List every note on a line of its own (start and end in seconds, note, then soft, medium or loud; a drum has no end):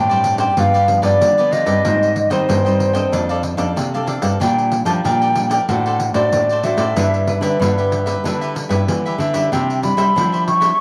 0.00 0.54 G2 medium
0.00 0.48 A2 medium
0.00 0.39 G5 medium
0.09 0.53 G3 medium
0.09 0.53 C4 medium
0.09 0.53 D4 medium
0.09 0.39 G4 medium
0.09 0.38 C5 medium
0.09 0.37 D5 medium
0.09 pandeiro soft
0.24 pandeiro medium
0.38 0.56 G4 medium
0.38 0.55 C5 medium
0.38 0.55 D5 medium
0.38 0.61 G5 medium
0.38 pandeiro medium
0.57 0.98 G2 medium
0.57 1.18 G2 medium
0.57 0.76 F3 medium
0.57 0.77 B3 medium
0.57 0.77 D4 medium
0.57 0.72 F4 soft
0.57 0.72 G4 soft
0.57 0.73 B4 soft
0.57 0.73 D5 soft
0.57 1.03 F5 medium
0.57 pandeiro medium
0.74 0.87 G4 medium
0.74 0.87 B4 medium
0.74 0.88 D5 medium
0.74 pandeiro soft
0.88 1.19 F3 medium
0.88 1.19 B3 soft
0.88 1.19 D4 medium
0.88 muted cavaquinho stroke soft
0.88 pandeiro medium
1.02 1.17 G2 medium
1.02 1.35 G4 soft
1.02 1.35 B4 medium
1.02 1.34 D5 medium
1.02 1.54 D5 loud
1.02 pandeiro medium
1.21 1.62 D3 medium
1.21 1.82 D3 soft
1.21 pandeiro medium
1.38 1.65 F3 medium
1.38 1.65 B3 medium
1.38 1.65 D4 medium
1.38 1.50 G4 medium
1.38 1.51 B4 medium
1.38 1.52 D5 medium
1.38 pandeiro soft
1.51 1.67 F4 soft
1.51 1.67 G4 soft
1.51 1.66 B4 soft
1.51 1.65 D5 medium
1.51 2.31 D#5 medium
1.51 pandeiro medium
1.66 1.81 G2 medium
1.66 2.11 G3 medium
1.66 2.11 C4 medium
1.66 2.11 D#4 medium
1.66 1.83 G4 soft
1.66 1.83 B4 medium
1.66 1.82 D5 medium
1.66 pandeiro medium
1.85 2.26 G#2 medium
1.85 2.46 G#2 medium
1.85 2.14 G#4 soft
1.85 2.14 C5 soft
1.85 2.15 D#5 soft
1.85 2.15 G5 medium
1.85 pandeiro medium
2.03 pandeiro soft
2.16 muted cavaquinho stroke soft
2.16 pandeiro medium
2.30 2.45 D#3 medium
2.30 2.59 G3 medium
2.30 2.59 C4 medium
2.30 2.59 D#4 medium
2.30 3.24 C5 medium
2.30 2.47 C5 medium
2.30 2.47 D#5 medium
2.30 2.46 G5 medium
2.30 pandeiro medium
2.48 3.03 G2 medium
2.48 3.10 D#3 medium
2.48 2.64 G#4 soft
2.48 2.64 C5 soft
2.48 2.64 D#5 soft
2.48 2.63 G5 medium
2.48 pandeiro medium
2.65 2.93 G3 medium
2.65 2.93 C4 medium
2.65 2.93 D#4 medium
2.65 2.94 C5 medium
2.65 2.94 D#5 medium
2.65 2.92 G5 medium
2.65 pandeiro soft
2.80 pandeiro medium
2.93 3.55 C4 medium
2.93 3.55 D4 medium
2.93 3.56 A4 medium
2.93 3.11 C5 medium
2.93 3.11 D#5 medium
2.93 3.10 G5 medium
2.93 pandeiro medium
3.12 3.53 F2 medium
3.12 3.74 F3 medium
3.12 3.27 D4 soft
3.12 3.28 A4 soft
3.12 3.28 D5 soft
3.12 3.28 F5 soft
3.12 pandeiro medium
3.29 3.42 A4 medium
3.29 3.42 D5 medium
3.29 3.43 F5 medium
3.29 pandeiro soft
3.43 muted cavaquinho stroke soft
3.43 pandeiro medium
3.57 3.73 F2 medium
3.57 3.87 C4 medium
3.57 3.87 D4 medium
3.57 3.91 A4 medium
3.57 3.87 A4 medium
3.57 3.90 D5 medium
3.57 3.90 F5 medium
3.57 pandeiro medium
3.76 4.17 C3 medium
3.76 4.38 C3 soft
3.76 pandeiro medium
3.94 4.37 C4 soft
3.94 4.37 D4 medium
3.94 4.37 A4 medium
3.94 4.07 A4 soft
3.94 4.07 D5 medium
3.94 4.07 F5 medium
3.94 pandeiro soft
4.07 4.22 D4 soft
4.07 4.23 A4 soft
4.07 4.22 D5 medium
4.07 4.21 F5 soft
4.07 pandeiro medium
4.22 4.37 G2 medium
4.22 4.39 A4 medium
4.22 4.39 D5 medium
4.22 4.38 F5 medium
4.22 pandeiro medium
4.40 4.81 A#2 medium
4.40 5.02 A#2 medium
4.40 4.84 G3 medium
4.40 4.71 D4 medium
4.40 4.84 D4 soft
4.40 4.84 F4 medium
4.40 4.71 A#4 soft
4.40 4.72 D5 medium
4.40 4.86 G5 loud
4.40 4.72 G5 medium
4.40 pandeiro medium
4.58 pandeiro soft
4.72 muted cavaquinho stroke soft
4.72 pandeiro medium
4.85 5.00 F3 medium
4.85 5.30 G3 medium
4.85 5.31 D4 medium
4.85 5.31 F4 medium
4.85 5.03 A#4 medium
4.85 5.03 D5 medium
4.85 5.02 G5 medium
4.85 4.92 A5 medium
4.85 pandeiro medium
5.04 5.59 A#2 medium
5.04 5.65 F3 medium
5.04 5.19 D4 soft
5.04 5.20 A#4 medium
5.04 5.20 D5 medium
5.04 5.50 G5 loud
5.04 5.20 G5 soft
5.04 pandeiro medium
5.22 5.50 A#4 medium
5.22 5.50 D5 medium
5.22 5.48 G5 medium
5.22 pandeiro soft
5.35 5.55 G3 medium
5.35 5.55 D4 medium
5.35 5.55 F4 medium
5.35 pandeiro medium
5.50 5.67 A#4 medium
5.50 5.67 D5 medium
5.50 5.66 G5 medium
5.50 5.71 G5 medium
5.50 pandeiro medium
5.69 6.09 A2 medium
5.69 6.30 A3 medium
5.69 6.12 D4 medium
5.69 5.83 F#4 soft
5.69 6.12 F#4 medium
5.69 5.84 A4 soft
5.69 6.12 C5 medium
5.69 5.84 C5 soft
5.69 5.84 D5 soft
5.69 6.14 F#5 medium
5.69 pandeiro medium
5.86 5.99 A4 medium
5.86 6.00 C5 medium
5.86 6.00 D5 medium
5.86 pandeiro soft
6.00 muted cavaquinho stroke soft
6.00 pandeiro medium
6.14 6.29 A2 medium
6.14 6.58 D4 medium
6.14 6.59 F#4 medium
6.14 6.47 A4 medium
6.14 6.59 C5 medium
6.14 6.47 C5 medium
6.14 6.66 D5 medium
6.14 6.46 D5 medium
6.14 pandeiro medium
6.32 6.73 A2 medium
6.32 6.94 A3 medium
6.32 pandeiro medium
6.49 6.64 A4 soft
6.49 6.64 C5 medium
6.49 6.64 D5 medium
6.49 pandeiro soft
6.63 6.83 D4 medium
6.63 6.83 F#4 medium
6.63 6.79 F#4 soft
6.63 6.79 A4 soft
6.63 6.83 C5 medium
6.63 6.79 C5 medium
6.63 6.77 D5 medium
6.63 7.45 E5 medium
6.63 pandeiro medium
6.77 6.92 A2 medium
6.77 6.95 A4 soft
6.77 6.95 C5 medium
6.77 6.94 D5 medium
6.77 pandeiro medium
6.96 7.37 G2 medium
6.96 7.58 G3 medium
6.96 7.27 D4 soft
6.96 7.24 D4 medium
6.96 7.24 E4 medium
6.96 7.28 G4 soft
6.96 7.24 B4 medium
6.96 7.28 B4 medium
6.96 7.28 E5 soft
6.96 pandeiro medium
7.14 pandeiro soft
7.27 7.47 D4 soft
7.27 7.48 E4 medium
7.27 7.48 B4 medium
7.27 muted cavaquinho stroke soft
7.27 pandeiro medium
7.41 7.56 D3 medium
7.41 7.59 G4 medium
7.41 8.40 B4 medium
7.41 7.59 B4 medium
7.41 7.58 E5 medium
7.41 pandeiro medium
7.59 8.14 G2 medium
7.59 8.22 D3 medium
7.59 7.75 D4 soft
7.59 8.02 D4 medium
7.59 8.02 E4 soft
7.59 7.76 G4 soft
7.59 8.02 B4 medium
7.59 7.76 B4 soft
7.59 7.76 E5 soft
7.59 pandeiro medium
7.78 8.07 G4 soft
7.78 8.06 B4 medium
7.78 8.05 E5 medium
7.78 pandeiro soft
7.92 pandeiro medium
8.06 8.23 G4 soft
8.06 8.23 B4 medium
8.06 8.22 E5 medium
8.06 pandeiro medium
8.24 8.65 D3 medium
8.24 8.86 G3 medium
8.24 8.40 D4 soft
8.24 8.55 D4 medium
8.24 8.55 E4 medium
8.24 8.40 G4 soft
8.24 8.55 B4 medium
8.24 8.40 B4 soft
8.24 8.40 E5 soft
8.24 pandeiro medium
8.41 8.54 G4 medium
8.41 8.54 B4 medium
8.41 8.55 E5 medium
8.41 pandeiro soft
8.55 muted cavaquinho stroke soft
8.55 pandeiro medium
8.69 8.84 G2 medium
8.69 9.30 D4 medium
8.69 9.31 E4 medium
8.69 9.03 G4 soft
8.69 9.02 B4 medium
8.69 9.31 B4 medium
8.69 9.02 E5 medium
8.69 pandeiro medium
8.88 9.50 D3 soft
8.88 9.17 E3 medium
8.88 pandeiro medium
9.06 9.18 G4 medium
9.06 9.19 B4 medium
9.06 9.19 E5 medium
9.06 pandeiro soft
9.18 9.48 D3 medium
9.18 9.35 D4 soft
9.18 9.34 G4 soft
9.18 9.33 B4 medium
9.18 9.54 E5 medium
9.18 9.32 E5 medium
9.18 pandeiro medium
9.33 9.78 G3 medium
9.33 9.79 D4 medium
9.33 9.79 E4 medium
9.33 9.51 G4 soft
9.33 9.50 B4 medium
9.33 9.50 E5 medium
9.33 pandeiro medium
9.52 9.93 C3 medium
9.52 10.13 C3 medium
9.52 9.81 D4 soft
9.52 9.81 G4 medium
9.52 9.82 C5 medium
9.52 9.82 E5 medium
9.52 9.83 G5 medium
9.52 pandeiro medium
9.70 pandeiro soft
9.82 10.03 G3 medium
9.82 10.03 D4 soft
9.82 10.03 E4 medium
9.82 10.44 B5 medium
9.82 muted cavaquinho stroke soft
9.82 pandeiro medium
9.97 10.12 G3 medium
9.97 10.14 G4 medium
9.97 10.14 C5 medium
9.97 10.14 E5 medium
9.97 pandeiro medium
10.15 10.71 F3 medium
10.15 10.77 G3 medium
10.15 10.31 D4 soft
10.15 10.76 D4 medium
10.15 10.76 E4 medium
10.15 10.31 G4 soft
10.15 10.31 C5 soft
10.15 10.31 E5 medium
10.15 pandeiro medium
10.32 10.62 G4 soft
10.32 10.61 C5 medium
10.32 10.59 E5 medium
10.32 pandeiro soft
10.48 10.80 C#6 loud
10.48 pandeiro medium
10.61 10.78 G4 soft
10.61 10.78 C5 soft
10.61 10.77 E5 medium
10.61 pandeiro medium